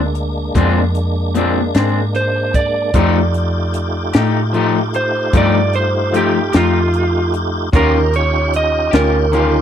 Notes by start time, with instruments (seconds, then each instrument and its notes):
Already playing: fingered electric bass D2, tonewheel organ G#3 A#3 D4
0.15 closed hi-hat
0.55 fingered electric bass F2, clean electric guitar A#2 G#3 C4 D4, kick, closed hi-hat
0.95 closed hi-hat
1.35 clean electric guitar A#2 G#3 C4 D4, closed hi-hat
1.75 fingered electric bass G#2, clean electric guitar G#3 C4 D4, snare, closed hi-hat
2.15 electric slide guitar C5, closed hi-hat
2.54 electric slide guitar D5, kick, closed hi-hat
2.94 fingered electric bass F2, clean electric guitar F3 A3 D#4 G4, tonewheel organ A3 D#4 F4 G4, kick, closed hi-hat
3.34 closed hi-hat
3.74 closed hi-hat
4.13 fingered electric bass A2, clean electric guitar A3 D#4 G4, snare, closed hi-hat
4.53 clean electric guitar F3 A3 D#4 G4, closed hi-hat
4.94 electric slide guitar C5, closed hi-hat
5.33 fingered electric bass G2, clean electric guitar F3 A3 D#4 G4, electric slide guitar D5, kick, closed hi-hat
5.73 electric slide guitar C5, closed hi-hat
6.12 clean electric guitar F3 A3 D#4 G4, closed hi-hat
6.17 electric slide guitar G4
6.53 fingered electric bass F2, clean electric guitar A3 D#4 G4, snare, closed hi-hat
6.57 electric slide guitar F4
6.94 closed hi-hat
7.34 closed hi-hat
7.73 fingered electric bass D#2, clean electric guitar D#3 C#4 F4 G4, tonewheel organ C#4 D#4 F4 G4, electric slide guitar A#4, kick, closed hi-hat
8.13 electric slide guitar C#5, closed hi-hat
8.53 electric slide guitar D#5, closed hi-hat
8.91 fingered electric bass D2, clean electric guitar C#4 F4 G4, electric slide guitar A#4, snare, closed hi-hat
9.32 clean electric guitar D#3 C#4 F4 G4, closed hi-hat